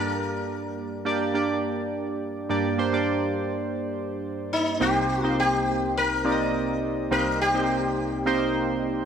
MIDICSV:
0, 0, Header, 1, 3, 480
1, 0, Start_track
1, 0, Tempo, 576923
1, 159, Time_signature, 4, 2, 24, 8
1, 7530, End_track
2, 0, Start_track
2, 0, Title_t, "Sitar"
2, 0, Program_c, 0, 104
2, 0, Note_on_c, 0, 70, 91
2, 1570, Note_off_c, 0, 70, 0
2, 3768, Note_on_c, 0, 63, 77
2, 4009, Note_on_c, 0, 67, 91
2, 4010, Note_off_c, 0, 63, 0
2, 4351, Note_off_c, 0, 67, 0
2, 4351, Note_on_c, 0, 65, 91
2, 4451, Note_off_c, 0, 65, 0
2, 4490, Note_on_c, 0, 67, 97
2, 4931, Note_off_c, 0, 67, 0
2, 4971, Note_on_c, 0, 70, 106
2, 5651, Note_off_c, 0, 70, 0
2, 5928, Note_on_c, 0, 70, 96
2, 6166, Note_off_c, 0, 70, 0
2, 6169, Note_on_c, 0, 67, 98
2, 7530, Note_off_c, 0, 67, 0
2, 7530, End_track
3, 0, Start_track
3, 0, Title_t, "Synth keys"
3, 0, Program_c, 1, 88
3, 0, Note_on_c, 1, 43, 58
3, 0, Note_on_c, 1, 58, 69
3, 0, Note_on_c, 1, 62, 66
3, 0, Note_on_c, 1, 67, 62
3, 0, Note_on_c, 1, 74, 74
3, 85, Control_c, 1, 64, 127
3, 685, Note_off_c, 1, 58, 0
3, 686, Note_off_c, 1, 62, 0
3, 688, Note_off_c, 1, 67, 0
3, 690, Note_off_c, 1, 74, 0
3, 875, Note_on_c, 1, 58, 89
3, 878, Note_on_c, 1, 62, 79
3, 882, Note_on_c, 1, 67, 83
3, 885, Note_on_c, 1, 74, 102
3, 1038, Note_off_c, 1, 58, 0
3, 1039, Note_off_c, 1, 62, 0
3, 1041, Note_off_c, 1, 67, 0
3, 1043, Note_off_c, 1, 74, 0
3, 1115, Note_on_c, 1, 58, 83
3, 1118, Note_on_c, 1, 62, 82
3, 1121, Note_on_c, 1, 67, 81
3, 1125, Note_on_c, 1, 74, 97
3, 1760, Note_off_c, 1, 58, 0
3, 1762, Note_off_c, 1, 62, 0
3, 1763, Note_off_c, 1, 67, 0
3, 1765, Note_off_c, 1, 74, 0
3, 1806, Note_off_c, 1, 43, 0
3, 2075, Note_on_c, 1, 58, 87
3, 2079, Note_on_c, 1, 62, 76
3, 2081, Note_on_c, 1, 43, 78
3, 2081, Note_on_c, 1, 67, 80
3, 2085, Note_on_c, 1, 74, 94
3, 2088, Control_c, 1, 64, 0
3, 2226, Control_c, 1, 64, 127
3, 2237, Note_off_c, 1, 58, 0
3, 2239, Note_off_c, 1, 62, 0
3, 2241, Note_off_c, 1, 67, 0
3, 2243, Note_off_c, 1, 74, 0
3, 2313, Note_on_c, 1, 58, 83
3, 2318, Note_on_c, 1, 62, 82
3, 2320, Note_on_c, 1, 67, 79
3, 2323, Note_on_c, 1, 72, 100
3, 2396, Note_off_c, 1, 58, 0
3, 2398, Note_off_c, 1, 62, 0
3, 2400, Note_off_c, 1, 67, 0
3, 2401, Note_off_c, 1, 72, 0
3, 2435, Note_on_c, 1, 58, 88
3, 2438, Note_on_c, 1, 62, 78
3, 2442, Note_on_c, 1, 67, 80
3, 2445, Note_on_c, 1, 74, 99
3, 3080, Note_off_c, 1, 58, 0
3, 3082, Note_off_c, 1, 62, 0
3, 3084, Note_off_c, 1, 67, 0
3, 3085, Note_off_c, 1, 74, 0
3, 3966, Note_off_c, 1, 43, 0
3, 3995, Note_on_c, 1, 58, 79
3, 3997, Note_on_c, 1, 60, 72
3, 3999, Note_on_c, 1, 36, 70
3, 3999, Note_on_c, 1, 48, 68
3, 4000, Note_on_c, 1, 63, 68
3, 4002, Note_on_c, 1, 67, 70
3, 4004, Note_on_c, 1, 72, 85
3, 4009, Control_c, 1, 64, 0
3, 4152, Control_c, 1, 64, 127
3, 4238, Note_off_c, 1, 58, 0
3, 4239, Note_off_c, 1, 60, 0
3, 4240, Note_off_c, 1, 63, 0
3, 4241, Note_off_c, 1, 67, 0
3, 4243, Note_off_c, 1, 72, 0
3, 4355, Note_on_c, 1, 58, 76
3, 4358, Note_on_c, 1, 60, 67
3, 4361, Note_on_c, 1, 63, 67
3, 4364, Note_on_c, 1, 67, 66
3, 4365, Note_on_c, 1, 72, 84
3, 4920, Note_off_c, 1, 58, 0
3, 4921, Note_off_c, 1, 60, 0
3, 4923, Note_off_c, 1, 63, 0
3, 4924, Note_off_c, 1, 67, 0
3, 4925, Note_off_c, 1, 72, 0
3, 5194, Note_on_c, 1, 58, 73
3, 5197, Note_on_c, 1, 60, 68
3, 5200, Note_on_c, 1, 63, 68
3, 5202, Note_on_c, 1, 67, 69
3, 5204, Note_on_c, 1, 74, 67
3, 5256, Note_off_c, 1, 74, 0
3, 5259, Note_on_c, 1, 75, 82
3, 5679, Note_off_c, 1, 58, 0
3, 5681, Note_off_c, 1, 60, 0
3, 5682, Note_off_c, 1, 63, 0
3, 5683, Note_off_c, 1, 67, 0
3, 5711, Note_off_c, 1, 75, 0
3, 5885, Note_off_c, 1, 36, 0
3, 5886, Note_off_c, 1, 48, 0
3, 5914, Note_on_c, 1, 58, 76
3, 5917, Note_on_c, 1, 60, 72
3, 5919, Note_on_c, 1, 36, 64
3, 5919, Note_on_c, 1, 48, 68
3, 5919, Note_on_c, 1, 63, 74
3, 5922, Note_on_c, 1, 67, 71
3, 5924, Note_on_c, 1, 72, 82
3, 6158, Note_off_c, 1, 58, 0
3, 6159, Note_off_c, 1, 60, 0
3, 6160, Note_off_c, 1, 63, 0
3, 6161, Note_off_c, 1, 67, 0
3, 6163, Note_off_c, 1, 72, 0
3, 6273, Note_on_c, 1, 58, 74
3, 6275, Note_on_c, 1, 60, 68
3, 6278, Note_on_c, 1, 63, 70
3, 6280, Note_on_c, 1, 67, 67
3, 6283, Note_on_c, 1, 72, 79
3, 6678, Note_off_c, 1, 58, 0
3, 6679, Note_off_c, 1, 60, 0
3, 6680, Note_off_c, 1, 63, 0
3, 6682, Note_off_c, 1, 67, 0
3, 6683, Note_off_c, 1, 72, 0
3, 6872, Note_on_c, 1, 58, 92
3, 6874, Note_on_c, 1, 60, 83
3, 6877, Note_on_c, 1, 63, 86
3, 6880, Note_on_c, 1, 67, 82
3, 6882, Note_on_c, 1, 72, 105
3, 7519, Note_off_c, 1, 58, 0
3, 7520, Note_off_c, 1, 60, 0
3, 7521, Note_off_c, 1, 63, 0
3, 7523, Note_off_c, 1, 67, 0
3, 7524, Note_off_c, 1, 72, 0
3, 7530, Note_off_c, 1, 36, 0
3, 7530, Note_off_c, 1, 48, 0
3, 7530, End_track
0, 0, End_of_file